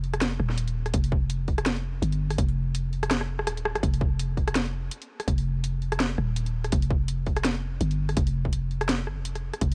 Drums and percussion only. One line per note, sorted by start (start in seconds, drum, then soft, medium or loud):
0.04 open hi-hat soft
0.14 cross-stick medium
0.14 closed hi-hat soft
0.21 snare loud
0.21 closed hi-hat medium
0.40 cross-stick soft
0.50 snare soft
0.58 closed hi-hat medium
0.68 closed hi-hat soft
0.86 cross-stick medium
0.86 closed hi-hat soft
0.94 kick loud
0.94 closed hi-hat medium
1.04 open hi-hat medium
1.12 kick loud
1.30 closed hi-hat medium
1.48 kick medium
1.48 open hi-hat soft
1.58 cross-stick medium
1.58 closed hi-hat soft
1.66 snare loud
1.66 closed hi-hat medium
1.76 open hi-hat soft
2.02 closed hi-hat medium
2.12 closed hi-hat soft
2.30 cross-stick medium
2.30 open hi-hat medium
2.38 kick loud
2.38 closed hi-hat medium
2.49 open hi-hat medium
2.75 closed hi-hat medium
2.93 open hi-hat soft
3.03 cross-stick medium
3.03 closed hi-hat soft
3.11 cross-stick medium
3.11 snare loud
3.11 closed hi-hat medium
3.21 cross-stick medium
3.39 cross-stick medium
3.47 cross-stick medium
3.47 closed hi-hat medium
3.57 closed hi-hat soft
3.65 cross-stick loud
3.75 cross-stick medium
3.75 closed hi-hat soft
3.83 kick loud
3.83 closed hi-hat medium
3.94 open hi-hat medium
4.01 kick loud
4.19 closed hi-hat medium
4.37 kick medium
4.37 open hi-hat soft
4.48 cross-stick medium
4.48 closed hi-hat soft
4.55 snare loud
4.55 closed hi-hat medium
4.66 open hi-hat soft
4.91 closed hi-hat medium
5.02 closed hi-hat soft
5.20 cross-stick medium
5.20 open hi-hat medium
5.28 kick loud
5.28 closed hi-hat medium
5.38 open hi-hat medium
5.64 closed hi-hat medium
5.82 open hi-hat soft
5.92 cross-stick medium
5.92 closed hi-hat soft
6.00 snare loud
6.00 closed hi-hat medium
6.18 cross-stick soft
6.36 closed hi-hat medium
6.46 closed hi-hat soft
6.64 cross-stick medium
6.64 closed hi-hat soft
6.72 kick loud
6.72 closed hi-hat medium
6.82 open hi-hat medium
6.90 kick loud
7.08 closed hi-hat medium
7.26 kick medium
7.26 open hi-hat soft
7.37 cross-stick medium
7.37 closed hi-hat soft
7.45 snare loud
7.45 closed hi-hat medium
7.55 open hi-hat soft
7.81 closed hi-hat medium
7.91 closed hi-hat soft
8.09 cross-stick medium
8.09 open hi-hat medium
8.17 kick loud
8.17 closed hi-hat medium
8.27 open hi-hat medium
8.45 kick medium
8.53 closed hi-hat medium
8.71 open hi-hat soft
8.81 cross-stick medium
8.81 closed hi-hat soft
8.89 snare loud
8.89 closed hi-hat medium
9.07 cross-stick soft
9.25 closed hi-hat medium
9.35 cross-stick soft
9.35 closed hi-hat soft
9.54 cross-stick medium
9.54 closed hi-hat soft
9.61 kick loud
9.61 closed hi-hat medium